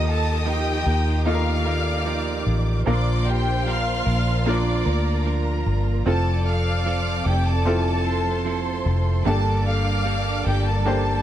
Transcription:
0.00 0.83 D#2 medium
0.00 0.82 D#3 medium
0.00 2.83 D#3 medium
0.00 1.18 A#3 medium
0.00 1.18 D#4 medium
0.00 2.83 D#4 medium
0.00 1.18 F4 medium
0.00 2.83 F4 medium
0.00 2.83 G4 medium
0.00 1.23 D#5 medium
0.00 1.23 D#6 medium
0.07 0.45 A#3 soft
0.07 0.46 D#4 medium
0.07 0.48 A4 medium
0.07 0.47 A5 medium
0.46 0.86 F3 medium
0.46 0.86 A#3 medium
0.46 0.86 D#4 medium
0.46 1.24 G4 medium
0.46 0.85 A#4 medium
0.46 1.23 G5 loud
0.86 2.42 D#2 loud
0.86 1.67 A#3 soft
0.86 1.66 D#4 medium
0.86 1.65 A#4 medium
1.25 2.78 A#3 medium
1.25 2.78 D#4 medium
1.25 2.79 F4 medium
1.25 1.33 A4 medium
1.25 2.83 D5 medium
1.25 2.43 F5 medium
1.25 2.83 D6 medium
1.25 2.43 F6 medium
1.34 2.82 A#4 medium
1.66 2.05 A#3 soft
1.66 2.06 D#4 soft
1.66 2.06 A#4 soft
2.05 2.86 F3 medium
2.05 2.86 A#3 medium
2.05 2.86 D#4 medium
2.05 2.87 A#4 medium
2.47 2.84 A1 medium
2.86 4.03 A#1 medium
2.86 3.26 A#2 medium
2.86 4.02 A#2 medium
2.86 3.26 D3 medium
2.86 3.26 F3 medium
2.86 4.38 A#3 medium
2.86 6.03 A#3 medium
2.86 3.26 A#3 medium
2.86 6.03 D4 medium
2.86 4.38 D4 medium
2.86 3.25 D4 medium
2.86 6.03 F4 medium
2.86 4.39 F4 medium
2.86 3.24 A#4 medium
2.86 4.39 A#4 medium
2.86 4.83 C5 medium
2.86 3.25 D5 medium
2.86 4.83 C6 medium
2.86 3.25 D6 medium
3.25 3.65 F3 soft
3.25 3.65 A#3 soft
3.25 3.66 D4 soft
3.25 3.67 G4 medium
3.25 3.66 A#4 medium
3.25 3.67 G5 loud
3.66 4.06 F3 medium
3.66 4.06 A#3 medium
3.66 4.05 D4 medium
3.66 4.04 A#4 medium
3.66 4.48 F5 loud
3.66 4.48 F6 medium
4.06 4.82 A#1 medium
4.06 4.87 F3 soft
4.06 4.86 A#3 medium
4.06 4.85 D4 medium
4.06 4.84 A#4 medium
4.46 5.98 A#3 medium
4.46 5.98 D4 medium
4.46 5.99 F4 medium
4.46 5.99 A#4 medium
4.46 5.27 D5 medium
4.46 5.27 D6 medium
4.86 5.62 D2 medium
4.86 5.24 F3 soft
4.86 5.25 A#3 soft
4.86 5.26 D4 soft
4.86 5.26 A#4 medium
4.86 6.04 A#4 medium
4.86 6.04 A#5 medium
5.25 6.06 F3 medium
5.25 6.06 A#3 medium
5.25 6.07 D4 medium
5.25 6.07 A#4 medium
5.66 6.04 G1 medium
6.06 7.22 F1 medium
6.06 9.23 F3 medium
6.06 6.46 F3 medium
6.06 9.23 C4 medium
6.06 7.58 C4 medium
6.06 6.46 C4 medium
6.06 6.47 E4 medium
6.06 7.59 F4 medium
6.06 11.22 A4 medium
6.06 7.59 A4 medium
6.06 6.44 A4 medium
6.06 6.45 A4 medium
6.06 8.02 D5 medium
6.06 6.44 A5 medium
6.06 8.02 D6 medium
6.46 6.85 C4 soft
6.46 6.86 A4 soft
6.46 7.27 F5 medium
6.46 7.27 F6 medium
6.85 7.26 F3 medium
6.85 7.26 C4 medium
6.85 7.24 A4 medium
7.25 8.82 F1 medium
7.25 8.06 C4 soft
7.25 8.05 E4 soft
7.25 7.46 G4 medium
7.25 8.05 A4 medium
7.25 7.46 G5 medium
7.48 8.87 A4 medium
7.48 8.87 A5 medium
7.65 9.18 C4 medium
7.65 9.18 E4 medium
7.65 9.19 F4 medium
7.65 9.19 A4 medium
8.05 8.45 C4 soft
8.05 8.45 E4 medium
8.05 8.46 A4 soft
8.05 9.24 C5 medium
8.05 9.24 C6 medium
8.45 9.25 F3 medium
8.45 9.26 C4 medium
8.45 9.26 E4 medium
8.45 9.26 A4 medium
8.86 9.23 F1 medium
9.25 10.42 G1 loud
9.25 9.66 G2 medium
9.25 10.42 G2 medium
9.25 9.66 D3 medium
9.25 9.66 G3 medium
9.25 11.22 G3 medium
9.25 10.78 A#3 medium
9.25 11.22 A#3 medium
9.25 9.65 A#3 medium
9.25 11.22 D4 medium
9.25 10.78 D4 medium
9.25 9.65 D4 medium
9.25 10.79 G4 medium
9.25 9.64 A4 medium
9.25 10.79 A4 medium
9.25 9.64 A4 medium
9.25 11.22 D5 medium
9.25 9.64 A5 loud
9.25 11.22 D6 medium
9.65 10.04 G3 soft
9.65 10.04 A#3 soft
9.65 10.05 D4 medium
9.65 10.06 A4 medium
9.65 10.43 F5 medium
9.65 10.43 F6 medium
10.05 10.46 G3 medium
10.05 10.45 A#3 medium
10.05 10.44 D4 medium
10.05 10.44 A4 medium
10.45 11.22 G1 loud
10.45 11.22 G3 soft
10.45 11.22 A#3 medium
10.45 11.22 D4 soft
10.45 10.66 G4 medium
10.45 11.22 A4 medium
10.45 10.64 G5 loud
10.66 11.22 A4 medium
10.66 11.22 A5 medium
10.86 11.22 A#3 medium
10.86 11.22 D4 medium
10.86 11.22 G4 medium
10.86 11.22 C5 medium

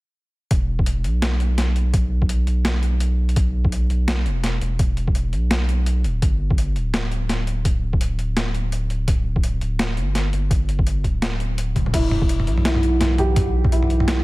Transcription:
0.51 1.06 E1 loud
0.51 kick loud
0.51 closed hi-hat medium
0.79 kick medium
0.86 closed hi-hat medium
1.04 2.46 B1 medium
1.04 closed hi-hat soft
1.22 snare loud
1.22 closed hi-hat medium
1.40 closed hi-hat soft
1.58 snare medium
1.58 closed hi-hat medium
1.76 closed hi-hat soft
1.94 kick loud
1.94 closed hi-hat medium
2.22 kick loud
2.29 closed hi-hat medium
2.47 3.89 B1 medium
2.47 closed hi-hat soft
2.65 snare loud
2.65 closed hi-hat medium
2.83 closed hi-hat soft
3.00 closed hi-hat medium
3.29 closed hi-hat soft
3.36 kick loud
3.36 closed hi-hat medium
3.65 kick loud
3.72 closed hi-hat medium
3.90 4.27 B1 medium
3.90 closed hi-hat soft
4.08 snare loud
4.08 closed hi-hat medium
4.26 4.61 E1 medium
4.26 closed hi-hat soft
4.44 snare medium
4.44 closed hi-hat medium
4.61 5.34 E1 medium
4.61 closed hi-hat soft
4.79 kick loud
4.79 closed hi-hat medium
4.97 closed hi-hat soft
5.08 kick loud
5.15 closed hi-hat medium
5.33 6.06 B1 medium
5.33 closed hi-hat soft
5.51 snare loud
5.51 closed hi-hat medium
5.69 closed hi-hat soft
5.86 closed hi-hat medium
6.04 6.21 D1 loud
6.04 closed hi-hat soft
6.22 6.77 G1 loud
6.22 kick loud
6.22 closed hi-hat medium
6.51 kick loud
6.58 closed hi-hat medium
6.76 8.18 D1 medium
6.76 closed hi-hat soft
6.94 snare loud
6.94 closed hi-hat medium
7.12 closed hi-hat soft
7.29 snare medium
7.29 closed hi-hat medium
7.47 closed hi-hat soft
7.65 kick loud
7.65 closed hi-hat medium
7.93 kick loud
8.01 closed hi-hat medium
8.19 9.61 D1 medium
8.19 closed hi-hat soft
8.37 snare loud
8.37 closed hi-hat medium
8.54 closed hi-hat soft
8.72 closed hi-hat medium
8.90 closed hi-hat soft
9.08 kick loud
9.08 closed hi-hat medium
9.36 kick medium
9.43 closed hi-hat medium
9.61 9.99 D1 medium
9.61 closed hi-hat soft
9.79 snare loud
9.79 closed hi-hat medium
9.97 10.32 G1 medium
9.97 closed hi-hat soft
10.15 snare medium
10.15 closed hi-hat medium
10.33 11.06 G1 medium
10.33 closed hi-hat soft
10.51 kick loud
10.51 closed hi-hat medium
10.69 closed hi-hat soft
10.79 kick loud
10.87 closed hi-hat medium
11.04 11.75 D1 medium
11.04 kick medium
11.04 closed hi-hat soft
11.22 snare loud
11.22 closed hi-hat medium
11.40 closed hi-hat soft
11.58 closed hi-hat medium
11.76 11.92 D1 loud
11.76 kick medium
11.76 closed hi-hat soft
11.76 high tom medium
11.86 mid tom medium
11.94 12.49 E1 loud
11.94 14.24 E4 medium
11.94 12.11 E4 medium
11.94 kick loud
11.94 closed hi-hat medium
11.94 mid tom medium
11.94 crash medium
12.06 14.24 F#5 medium
12.11 mid tom medium
12.22 kick loud
12.27 14.24 B4 medium
12.27 closed hi-hat medium
12.40 mid tom medium
12.47 13.89 B1 medium
12.47 closed hi-hat soft
12.58 mid tom medium
12.65 13.17 E4 medium
12.65 snare loud
12.65 closed hi-hat medium
12.75 mid tom medium
12.83 closed hi-hat soft
13.01 snare medium
13.01 closed hi-hat medium
13.01 mid tom medium
13.18 13.36 G4 medium
13.18 closed hi-hat soft
13.18 mid tom medium
13.36 14.24 G5 medium
13.36 kick loud
13.36 closed hi-hat medium
13.36 mid tom medium
13.65 kick loud
13.65 mid tom medium
13.72 13.89 E4 medium
13.72 closed hi-hat medium
13.83 mid tom medium
13.90 14.24 B1 medium
13.90 closed hi-hat soft
14.00 mid tom medium
14.08 snare loud
14.08 closed hi-hat medium

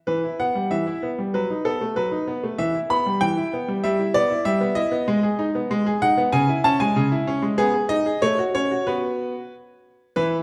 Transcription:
0.07 0.23 E3 medium
0.07 0.39 B4 medium
0.24 0.40 E4 soft
0.40 0.56 B3 medium
0.40 0.68 F#5 medium
0.55 0.72 G3 soft
0.71 0.86 E3 medium
0.71 1.09 E5 medium
0.87 1.03 E4 medium
1.03 1.19 B3 medium
1.19 1.34 G3 soft
1.34 1.49 F#3 medium
1.34 1.65 B4 medium
1.50 1.66 D#4 soft
1.65 1.82 B3 medium
1.65 1.97 A4 medium
1.81 1.98 A3 soft
1.96 2.12 F#3 medium
1.96 2.59 B4 medium
2.12 2.28 D#4 medium
2.27 2.44 B3 medium
2.43 2.59 A3 medium
2.58 2.74 E3 medium
2.58 2.77 E5 medium
2.75 2.91 E4 medium
2.90 3.07 B3 medium
2.90 3.21 B5 loud
3.06 3.23 G3 medium
3.21 3.37 E3 medium
3.21 3.84 G5 loud
3.37 3.54 E4 medium
3.53 3.70 B3 medium
3.68 3.83 G3 medium
3.84 3.99 G3 medium
3.84 4.12 E5 medium
3.99 4.16 E4 medium
4.14 4.31 B3 medium
4.14 4.43 D5 loud
4.30 4.46 E4 medium
4.45 4.61 G3 medium
4.45 4.77 E5 loud
4.61 4.77 B3 medium
4.75 4.93 E4 medium
4.75 5.50 D#5 loud
4.92 5.08 B3 medium
5.08 5.23 G#3 medium
5.23 5.40 G#4 medium
5.39 5.55 D#4 medium
5.55 5.71 B3 medium
5.71 5.85 G#3 medium
5.87 6.02 G#4 medium
6.02 6.18 D#4 medium
6.02 6.20 F#5 loud
6.18 6.33 B3 medium
6.32 6.48 C#3 medium
6.32 6.60 G#5 loud
6.49 6.65 E4 medium
6.64 6.81 C#4 medium
6.64 6.80 A5 loud
6.80 6.97 G#3 medium
6.80 7.08 G#5 loud
6.96 7.11 C#3 medium
7.12 7.28 E4 medium
7.27 7.44 C#4 medium
7.42 7.58 G#3 medium
7.58 7.74 B3 medium
7.58 7.72 G#4 loud
7.74 7.91 G#4 medium
7.89 8.07 D#4 medium
7.89 8.22 D#5 loud
8.06 8.22 G#4 medium
8.22 8.38 A3 medium
8.22 8.41 C#5 loud
8.39 8.55 F#4 medium
8.55 8.72 C#4 medium
8.55 8.87 C#5 loud
8.71 8.86 F#4 medium
8.87 9.33 B3 medium
8.87 9.39 F#4 medium
8.87 9.52 B4 medium
10.16 10.43 E3 medium
10.16 10.43 E4 medium
10.16 10.35 B4 loud

